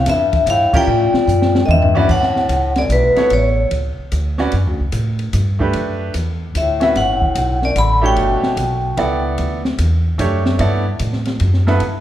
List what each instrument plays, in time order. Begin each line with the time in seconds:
0.06 upright bass E2, bass clarinet G2, vibraphone E5, snare, hi-hat pedal, ride
0.33 kick, ride
0.46 upright bass G2, bass clarinet A2, vibraphone F5, hi-hat pedal, ride
0.73 bass clarinet A#2, upright piano C#4 E4 G4 A#4, vibraphone G5, muted upright bass stroke, kick, crash
0.87 upright bass A2
1.13 muted upright bass stroke, snare
1.27 upright bass F#2, hi-hat pedal
1.42 snare
1.55 snare
1.64 bass clarinet F#2, vibraphone D#5
1.68 upright bass E2, bass clarinet G2, vibraphone E5, mid tom
1.82 floor tom
1.94 upright piano E3 C#4 F#4 B4 D5, floor tom
2.09 upright bass D2, bass clarinet A2, vibraphone F#5, kick, crash
2.23 snare
2.36 snare
2.49 upright bass C#2, hi-hat pedal, ride
2.76 bass clarinet F#2, vibraphone D5, snare, ride
2.89 upright bass B1, bass clarinet D2, vibraphone B4, hi-hat pedal, ride
3.16 upright piano B3 E4 A4 C#5, muted upright bass stroke, snare, ride
3.30 upright bass A1, bass clarinet E2, vibraphone C#5, ride
3.71 upright bass C#2, ride
3.98 muted upright bass stroke
4.12 upright bass D2, hi-hat pedal, ride
4.38 upright piano C#4 F#4 B4 D5, snare
4.52 upright bass F#2, ride
4.67 upright bass D2
4.80 upright bass C#2
4.92 upright bass A2, hi-hat pedal, ride
5.19 ride
5.33 upright bass G2, hi-hat pedal, ride
5.59 upright piano A3 D4 G4 B4, kick
5.73 upright bass F#2, ride
6.14 upright bass E2, hi-hat pedal, ride
6.55 upright bass D2, bass clarinet A2, vibraphone E5, hi-hat pedal, ride
6.80 upright piano C#4 F#4 B4 E5, snare, ride
6.95 upright bass G1, bass clarinet A2, vibraphone F#5, snare, ride
7.22 kick
7.35 upright bass B1, hi-hat pedal, ride
7.61 bass clarinet F#2, vibraphone D5, snare
7.76 upright bass A1, bass clarinet D3, vibraphone B5, hi-hat pedal, ride
8.02 bass clarinet B2, upright piano A3 D4 G4 C#5
8.06 vibraphone G5
8.16 upright bass G1, ride
8.43 muted upright bass stroke, snare
8.57 upright bass B1, hi-hat pedal, ride
8.97 upright bass C#2, upright piano B3 E4 A4 D5, ride
9.38 upright bass D2, ride
9.65 snare
9.78 upright bass E2, hi-hat pedal, ride
10.18 upright bass F#2, upright piano A3 D4 G4 C#5, hi-hat pedal, ride
10.46 snare
10.59 upright bass G2, upright piano B3 E4 A4 D5, ride
10.99 upright bass A2, hi-hat pedal, ride
11.13 snare
11.25 snare, ride
11.40 upright bass F#2, ride
11.54 snare
11.67 upright piano G2 B3 E4 A4 B4, snare
11.80 upright bass G2, ride